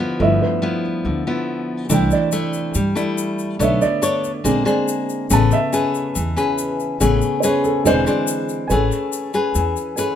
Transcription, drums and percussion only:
1.90 shaker
2.11 shaker
2.32 shaker
2.53 shaker
2.74 shaker
2.96 shaker
3.18 shaker
3.39 shaker
3.61 shaker
3.82 shaker
4.03 shaker
4.24 shaker
4.45 shaker
4.67 shaker
4.88 shaker
5.10 shaker
5.30 shaker
5.52 shaker
5.73 shaker
5.95 shaker
6.15 shaker
6.37 shaker
6.58 shaker
6.80 shaker
7.01 shaker
7.22 shaker
7.43 shaker
7.64 shaker
7.86 shaker
8.07 shaker
8.27 shaker
8.49 shaker
8.70 shaker
8.92 shaker
9.13 shaker
9.34 shaker
9.55 shaker
9.76 shaker
9.97 shaker

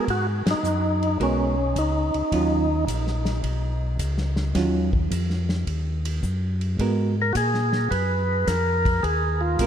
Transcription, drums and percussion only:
0.08 kick, ride
0.47 snare, ride
0.64 hi-hat pedal
1.03 ride
1.20 kick, ride
1.76 kick, hi-hat pedal, ride
2.14 ride
2.32 kick, ride
2.88 kick, hi-hat pedal, ride
3.07 snare
3.25 snare, ride
3.43 kick, ride
3.99 kick, hi-hat pedal, ride
4.18 snare
4.36 snare
4.55 kick, snare, ride
4.93 kick
5.11 kick, hi-hat pedal, ride
5.30 snare
5.49 snare
5.67 kick, ride
6.05 ride
6.23 kick, hi-hat pedal
6.61 ride
6.79 kick, ride
7.35 kick, hi-hat pedal, ride
7.54 snare
7.72 snare
7.91 kick, ride
8.47 kick, snare, hi-hat pedal, ride
8.85 kick, ride
9.03 kick, ride
9.59 kick, hi-hat pedal, ride

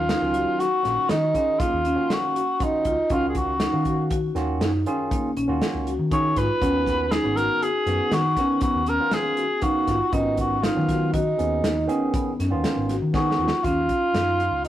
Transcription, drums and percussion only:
0.09 snare, closed hi-hat
0.34 closed hi-hat
0.60 snare, closed hi-hat
0.85 snare, closed hi-hat
1.09 snare, closed hi-hat
1.35 kick, closed hi-hat
1.60 kick, snare, closed hi-hat
1.85 closed hi-hat
2.10 snare, closed hi-hat
2.36 closed hi-hat
2.60 kick, closed hi-hat
2.85 kick, closed hi-hat
3.10 kick, closed hi-hat
3.35 kick, closed hi-hat
3.60 snare, closed hi-hat
3.85 kick, closed hi-hat
4.10 kick, closed hi-hat
4.36 snare, closed hi-hat
4.61 snare, closed hi-hat
4.86 closed hi-hat
5.11 kick, closed hi-hat
5.37 closed hi-hat
5.62 snare, closed hi-hat
5.87 closed hi-hat
6.11 kick, closed hi-hat
6.36 kick, snare, closed hi-hat
6.62 kick, closed hi-hat
6.86 kick, snare, closed hi-hat
7.12 snare, closed hi-hat
7.37 snare, closed hi-hat
7.62 closed hi-hat
7.87 snare, closed hi-hat
8.12 snare, closed hi-hat
8.37 kick, snare, closed hi-hat
8.61 kick, closed hi-hat
8.86 closed hi-hat
9.11 snare, closed hi-hat
9.37 closed hi-hat
9.62 kick, closed hi-hat
9.87 kick, snare, closed hi-hat
10.12 kick, closed hi-hat
10.37 kick, closed hi-hat
10.63 snare, closed hi-hat
10.89 kick, snare, closed hi-hat
11.14 kick, closed hi-hat
11.39 closed hi-hat
11.64 snare, closed hi-hat
11.89 closed hi-hat
12.14 kick, closed hi-hat
12.40 snare, closed hi-hat
12.64 snare, closed hi-hat
12.89 snare, closed hi-hat
13.14 kick, snare
13.31 snare
13.48 snare
13.64 kick, closed hi-hat
13.89 kick, closed hi-hat
14.15 snare, closed hi-hat
14.40 closed hi-hat
14.65 closed hi-hat

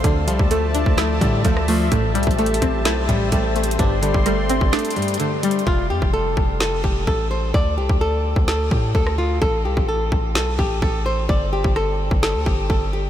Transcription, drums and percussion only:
0.04 kick, closed hi-hat
0.28 closed hi-hat
0.39 kick
0.51 closed hi-hat
0.74 closed hi-hat
0.86 kick
0.98 snare, closed hi-hat
1.21 kick, closed hi-hat
1.45 kick, closed hi-hat
1.57 cross-stick
1.68 open hi-hat
1.92 kick, closed hi-hat
2.15 closed hi-hat
2.23 kick, closed hi-hat
2.31 closed hi-hat
2.39 closed hi-hat
2.46 closed hi-hat
2.54 closed hi-hat
2.62 kick, closed hi-hat
2.85 snare, closed hi-hat
3.09 kick, closed hi-hat
3.32 kick, closed hi-hat
3.56 closed hi-hat
3.64 closed hi-hat
3.71 closed hi-hat
3.79 kick, closed hi-hat
4.03 closed hi-hat
4.14 kick
4.26 cross-stick, closed hi-hat
4.49 closed hi-hat
4.61 kick
4.73 snare, closed hi-hat
4.79 closed hi-hat
4.85 closed hi-hat
4.91 closed hi-hat
4.96 closed hi-hat
5.02 closed hi-hat
5.08 closed hi-hat
5.14 closed hi-hat
5.20 closed hi-hat
5.43 closed hi-hat, open hi-hat
5.51 closed hi-hat
5.59 closed hi-hat
5.67 kick
6.02 kick
6.37 kick
6.60 snare
6.84 kick
7.07 kick
7.54 kick
7.89 kick
8.36 kick
8.48 snare
8.71 kick
8.95 kick
9.07 cross-stick
9.42 kick
9.77 kick
10.12 kick
10.35 snare
10.59 kick
10.82 kick
11.29 kick
11.64 kick
11.76 cross-stick
12.11 kick
12.23 snare
12.46 kick
12.70 kick

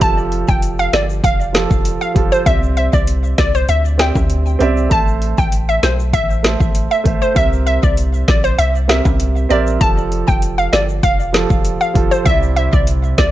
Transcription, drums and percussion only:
0.01 kick, closed hi-hat, shaker
0.18 shaker
0.32 closed hi-hat
0.48 kick, shaker
0.62 closed hi-hat, shaker
0.79 shaker
0.93 snare, closed hi-hat, shaker
1.10 shaker
1.24 kick, closed hi-hat, shaker
1.41 shaker
1.55 snare, closed hi-hat
1.71 kick, shaker
1.85 closed hi-hat, shaker
2.02 shaker
2.16 kick, closed hi-hat
2.32 shaker
2.46 kick, closed hi-hat, shaker
2.63 shaker
2.77 closed hi-hat
2.93 kick, shaker
3.07 closed hi-hat, shaker
3.24 shaker
3.38 kick, snare, closed hi-hat, shaker
3.55 shaker
3.69 closed hi-hat, shaker
3.85 shaker
3.99 snare, closed hi-hat
4.15 kick, high timbale, shaker
4.30 closed hi-hat, shaker
4.46 shaker
4.61 closed hi-hat, high timbale
4.77 shaker
4.91 kick, closed hi-hat, shaker
5.08 shaker
5.22 closed hi-hat
5.38 kick, shaker
5.52 closed hi-hat, shaker
5.69 shaker
5.83 snare, closed hi-hat, shaker
6.00 shaker
6.13 kick, closed hi-hat, shaker
6.30 shaker
6.44 snare, closed hi-hat
6.60 kick, shaker
6.75 closed hi-hat, shaker
6.91 shaker
7.05 kick, closed hi-hat
7.22 shaker
7.36 kick, closed hi-hat, shaker
7.53 shaker
7.67 closed hi-hat
7.83 kick, shaker
7.97 closed hi-hat, shaker
8.14 shaker
8.28 kick, snare, closed hi-hat, shaker
8.44 shaker
8.59 closed hi-hat, shaker
8.75 shaker
8.89 snare, closed hi-hat
9.05 kick, high timbale, shaker
9.20 closed hi-hat, shaker
9.36 shaker
9.50 closed hi-hat
9.67 shaker
9.81 kick, closed hi-hat, shaker
9.98 shaker
10.12 closed hi-hat
10.28 kick, shaker
10.42 closed hi-hat, shaker
10.58 shaker
10.73 snare, closed hi-hat, shaker
10.89 shaker
11.03 kick, closed hi-hat, shaker
11.20 shaker
11.34 snare, closed hi-hat
11.50 kick, shaker
11.65 closed hi-hat, shaker
11.81 shaker
11.95 kick, closed hi-hat
12.12 shaker
12.26 kick, closed hi-hat, shaker
12.43 shaker
12.57 closed hi-hat
12.73 kick, shaker
12.87 closed hi-hat, shaker
13.04 shaker
13.18 kick, snare, closed hi-hat, shaker

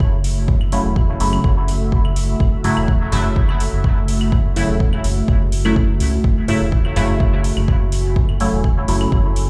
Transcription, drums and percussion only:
0.00 kick
0.24 open hi-hat
0.48 kick
0.61 claves
0.72 open hi-hat
0.96 kick
1.20 open hi-hat
1.33 claves
1.44 kick
1.68 open hi-hat
1.92 kick
2.05 claves
2.16 open hi-hat
2.40 kick
2.64 mid tom, open hi-hat
2.77 claves
2.88 kick
3.12 mid tom, open hi-hat
3.36 kick
3.49 claves
3.60 open hi-hat
3.84 kick
4.08 open hi-hat
4.21 claves
4.32 kick
4.56 open hi-hat
4.80 kick
4.93 claves
5.04 open hi-hat
5.28 kick
5.52 open hi-hat
5.65 claves
5.76 kick
6.00 open hi-hat
6.24 kick
6.48 mid tom, open hi-hat
6.72 kick
6.85 claves
6.96 mid tom, open hi-hat
7.20 kick
7.44 open hi-hat
7.57 claves
7.68 kick
7.92 open hi-hat
8.16 kick
8.29 claves
8.40 open hi-hat
8.64 kick
8.88 open hi-hat
9.01 claves
9.12 kick
9.36 open hi-hat

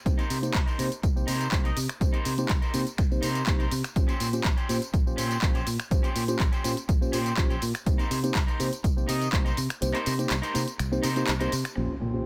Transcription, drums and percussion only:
0.06 kick, closed hi-hat, tambourine
0.19 closed hi-hat, tambourine
0.30 open hi-hat, tambourine
0.43 closed hi-hat, tambourine
0.54 kick, clap, closed hi-hat, tambourine
0.68 closed hi-hat, tambourine
0.79 open hi-hat, tambourine
0.92 closed hi-hat, tambourine
1.03 kick, closed hi-hat, tambourine
1.17 tambourine
1.28 open hi-hat, tambourine
1.41 closed hi-hat, tambourine
1.52 kick, clap, closed hi-hat, tambourine
1.65 closed hi-hat, tambourine
1.77 open hi-hat, tambourine
1.89 finger snap, closed hi-hat, tambourine
2.01 kick, closed hi-hat, tambourine
2.14 closed hi-hat, tambourine
2.25 open hi-hat, tambourine
2.38 closed hi-hat, tambourine
2.49 kick, clap, closed hi-hat, tambourine
2.62 closed hi-hat, tambourine
2.74 open hi-hat, tambourine
2.87 closed hi-hat, tambourine
2.98 finger snap, kick, closed hi-hat, tambourine
3.12 tambourine
3.23 open hi-hat, tambourine
3.35 closed hi-hat, tambourine
3.47 kick, clap, closed hi-hat, tambourine
3.60 closed hi-hat, tambourine
3.71 open hi-hat, tambourine
3.84 finger snap, closed hi-hat, tambourine
3.96 kick, closed hi-hat, tambourine
4.09 closed hi-hat, tambourine
4.20 open hi-hat, tambourine
4.33 closed hi-hat, tambourine
4.44 kick, clap, closed hi-hat, tambourine
4.58 closed hi-hat, tambourine
4.69 open hi-hat, tambourine
4.82 closed hi-hat, tambourine
4.94 kick, closed hi-hat, tambourine
5.07 tambourine
5.18 open hi-hat, tambourine
5.31 closed hi-hat, tambourine
5.42 kick, clap, closed hi-hat, tambourine
5.55 closed hi-hat, tambourine
5.67 open hi-hat, tambourine
5.80 finger snap, closed hi-hat, tambourine
5.91 kick, closed hi-hat, tambourine
6.04 closed hi-hat, tambourine
6.16 open hi-hat, tambourine
6.28 closed hi-hat, tambourine
6.39 kick, clap, closed hi-hat, tambourine
6.53 closed hi-hat, tambourine
6.64 open hi-hat, tambourine
6.77 closed hi-hat, tambourine
6.89 kick, closed hi-hat, tambourine
7.02 tambourine
7.13 open hi-hat, tambourine
7.26 closed hi-hat, tambourine
7.37 kick, clap, closed hi-hat, tambourine
7.50 closed hi-hat, tambourine
7.62 open hi-hat, tambourine
7.75 finger snap, closed hi-hat, tambourine
7.86 kick, closed hi-hat, tambourine
7.99 closed hi-hat, tambourine
8.11 open hi-hat, tambourine
8.24 closed hi-hat, tambourine
8.35 kick, clap, closed hi-hat, tambourine
8.48 closed hi-hat, tambourine
8.60 open hi-hat, tambourine
8.73 closed hi-hat, tambourine
8.84 kick, closed hi-hat, tambourine
8.98 tambourine
9.09 open hi-hat, tambourine
9.22 closed hi-hat, tambourine
9.33 kick, clap, closed hi-hat, tambourine
9.46 closed hi-hat, tambourine
9.57 open hi-hat, tambourine
9.70 finger snap, closed hi-hat, tambourine
9.82 closed hi-hat, tambourine
9.94 clap, closed hi-hat, tambourine
10.06 open hi-hat, tambourine
10.19 closed hi-hat, tambourine
10.30 clap, closed hi-hat, tambourine
10.43 closed hi-hat, tambourine
10.55 open hi-hat, tambourine
10.68 closed hi-hat, tambourine
10.79 finger snap, closed hi-hat, tambourine
10.93 tambourine
11.03 open hi-hat, tambourine
11.16 closed hi-hat, tambourine
11.27 clap, closed hi-hat, tambourine
11.41 closed hi-hat, tambourine
11.52 open hi-hat, tambourine
11.65 finger snap, closed hi-hat, tambourine

